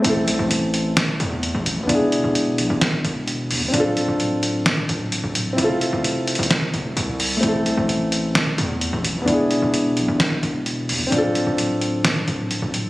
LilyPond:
<<
  \new Staff \with { instrumentName = "Grand piano" } { \time 4/4 \key a \minor \tempo 4 = 130 <a c' e' a'>1 | <b d' e' gis'>1 | <c' d' f' a'>1 | <c' e' f' a'>1 |
<a c' e' a'>1 | <b d' e' gis'>1 | <c' d' f' a'>1 | }
  \new Staff \with { instrumentName = "808-style bass" } { \clef bass \time 4/4 \key a \minor a,,8 c,16 a,,4.~ a,,16 e,8. a,,8 e,16 | e,,8. e,,8. b,,16 gis,,8. e,,4 e,16 e,,16 | d,,8. d,,4.~ d,,16 d,,8. d,,8. | f,,8. f,,4 f,,8. f,,8 c,4 |
a,,8 c,16 a,,4.~ a,,16 e,8. a,,8 e,16 | e,,8. e,,8. b,,16 gis,,8. e,,4 e,16 e,,16 | d,,8. d,,4.~ d,,16 d,,8. d,,8. | }
  \new DrumStaff \with { instrumentName = "Drums" } \drummode { \time 4/4 hh8 hh8 hh8 hh8 <hh sn>8 hh8 hh8 hh8 | hh8 hh8 hh8 hh8 <hh sn>8 hh8 hh8 hho8 | hh8 hh8 hh8 hh8 <hh sn>8 hh8 hh8 hh8 | hh8 hh8 \tuplet 3/2 { hh16 r16 r16 hh16 hh16 hh16 } <hh sn>8 hh8 hh8 hho8 |
hh8 hh8 hh8 hh8 <hh sn>8 hh8 hh8 hh8 | hh8 hh8 hh8 hh8 <hh sn>8 hh8 hh8 hho8 | hh8 hh8 hh8 hh8 <hh sn>8 hh8 hh8 hh8 | }
>>